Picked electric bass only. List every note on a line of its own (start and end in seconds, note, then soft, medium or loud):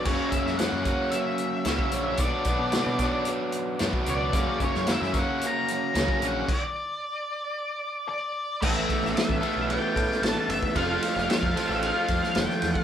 0.06 0.16 F#1 medium
0.32 0.43 F#1 medium
0.46 0.67 F#2 medium
0.72 0.93 F#2 medium
1.66 1.76 C#2 medium
1.93 2.14 A#1 medium
2.18 2.29 B1 medium
2.45 2.56 B1 medium
2.59 2.80 B2 medium
2.86 3.07 B2 medium
3.81 3.91 F#2 medium
4.07 4.28 C#2 medium
4.33 4.44 F#1 medium
4.60 4.71 F#1 medium
4.76 4.96 F#2 medium
5.01 5.22 F#2 medium
5.95 6.06 C#2 medium
6.22 6.42 A#1 medium
8.63 8.83 A1 loud
9.02 9.13 A1 medium
9.29 9.39 A1 medium
9.57 9.77 B1 medium
9.96 10.06 A2 medium
10.22 10.33 A1 medium
10.48 10.59 F#1 medium
10.76 10.97 F1 medium
11.16 11.27 F1 loud
11.43 11.53 F1 medium
11.69 11.90 A1 medium
12.09 12.20 F2 medium
12.36 12.46 F1 medium
12.63 12.73 E2 medium